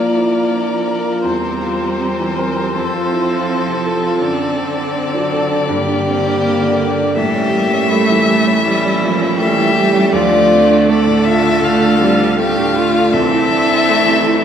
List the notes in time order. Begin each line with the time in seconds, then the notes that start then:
Already playing: A#2 F3 A#3 D4 E4 F4 A#4 D5
0.14 E4
0.32 F4
0.51 D4
0.69 F3
0.87 A#4
1.05 F4
1.24 E2 G3 C4 C5
1.44 G4
1.62 F4
1.81 G4
2.00 C4
2.19 E3
2.38 A#4
2.56 G4
2.75 F2 F3 A4
2.93 F4
3.12 E4
3.31 F4
3.49 C4
3.68 C3
3.86 A4
4.03 F4
4.21 F#2 D3 D5
4.40 D4
4.58 C4
4.77 D4
4.97 C4
5.14 F#3
5.33 A4
5.51 D4
5.69 G2 A#3 G4
5.88 D4
6.07 C4
6.26 D4
6.43 A#3
6.62 D3
6.80 G4
6.99 D4
7.16 A2 E3 G3 G4 E5
7.35 C#4
7.52 G3 A#3
7.73 C#4
7.90 A3 E4
8.10 E3
8.26 A3 G4
8.47 C#4
8.63 E3 G3 E4
8.84 C#4
9.01 F3 A#3
9.21 C#4
9.38 E3 G3 A3 G4 E5
9.57 E3
9.76 G3 G4
9.94 C#4
10.13 D2 F3 A3 F4 D5
10.31 D4
10.50 D3 C4
10.69 D4
10.88 A3 A4 D5
11.07 A2
11.25 F4 E5
11.43 D4
11.62 A2 A3 F5
11.81 D4
11.99 G3 C4
12.18 D4
12.36 A3 G4 F5
12.56 A2
12.74 F4
12.93 D4
13.12 C2 E3 C4 A4 E5
13.32 E4
13.51 E3 D4
13.69 E4
13.89 A3
14.09 C3
14.29 E4